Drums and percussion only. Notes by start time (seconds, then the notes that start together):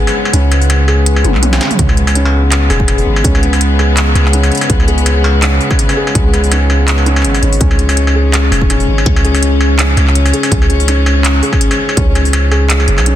0.07 open hi-hat, struck metal
0.25 struck metal
0.34 closed hi-hat
0.52 closed hi-hat, struck metal
0.62 open hi-hat
0.70 closed hi-hat, struck metal
0.88 struck metal
1.06 closed hi-hat
1.16 struck metal
1.24 closed hi-hat, high tom
1.35 clap
1.43 closed hi-hat, mid tom
1.53 snare, open hi-hat, struck metal
1.61 snare, closed hi-hat
1.71 mid tom, open hi-hat
1.79 kick, closed hi-hat
1.89 struck metal
1.97 closed hi-hat
2.07 open hi-hat, struck metal
2.15 closed hi-hat
2.25 struck metal
2.52 clap, closed hi-hat, struck metal
2.70 open hi-hat, struck metal
2.80 kick
2.88 closed hi-hat, struck metal
2.98 open hi-hat
3.16 struck metal
3.24 kick, closed hi-hat
3.35 struck metal
3.43 closed hi-hat
3.53 open hi-hat, struck metal
3.61 closed hi-hat
3.79 struck metal
3.97 clap, closed hi-hat, struck metal
4.15 closed hi-hat, struck metal
4.25 clap
4.33 closed hi-hat
4.43 open hi-hat, struck metal
4.52 closed hi-hat
4.55 closed hi-hat
4.57 closed hi-hat, open hi-hat, struck metal
4.70 kick, closed hi-hat
4.80 struck metal
4.88 closed hi-hat
4.98 open hi-hat
5.06 closed hi-hat, struck metal
5.24 struck metal
5.42 clap, closed hi-hat, struck metal
5.61 open hi-hat
5.71 kick, struck metal
5.79 closed hi-hat
5.89 open hi-hat, struck metal
6.07 struck metal
6.15 kick, closed hi-hat
6.34 closed hi-hat, struck metal
6.44 open hi-hat
6.52 closed hi-hat, struck metal
6.70 struck metal
6.88 clap, closed hi-hat
6.98 struck metal
7.06 closed hi-hat
7.16 clap, struck metal
7.25 closed hi-hat
7.35 open hi-hat, struck metal
7.43 closed hi-hat
7.53 open hi-hat
7.61 kick, closed hi-hat
7.71 struck metal
7.79 closed hi-hat
7.89 open hi-hat, struck metal
7.97 closed hi-hat
8.07 struck metal
8.34 clap, closed hi-hat, struck metal
8.52 open hi-hat, struck metal
8.62 kick
8.70 closed hi-hat, struck metal
8.80 open hi-hat
8.98 struck metal
9.06 kick, closed hi-hat
9.16 struck metal
9.25 closed hi-hat
9.35 open hi-hat, struck metal
9.43 closed hi-hat
9.61 struck metal
9.79 clap, closed hi-hat, struck metal
9.97 closed hi-hat, struck metal
10.07 clap
10.15 closed hi-hat
10.26 open hi-hat, struck metal
10.33 closed hi-hat
10.43 open hi-hat, struck metal
10.52 kick, closed hi-hat
10.62 struck metal
10.70 closed hi-hat
10.80 open hi-hat
10.88 closed hi-hat, struck metal
11.06 struck metal
11.25 clap, closed hi-hat, struck metal
11.43 open hi-hat
11.53 kick, struck metal
11.61 closed hi-hat
11.71 open hi-hat, struck metal
11.89 struck metal
11.97 kick, closed hi-hat
12.15 closed hi-hat, struck metal
12.25 open hi-hat
12.33 closed hi-hat, struck metal
12.52 struck metal
12.70 clap, closed hi-hat
12.80 struck metal
12.88 closed hi-hat
12.98 clap, struck metal
13.06 closed hi-hat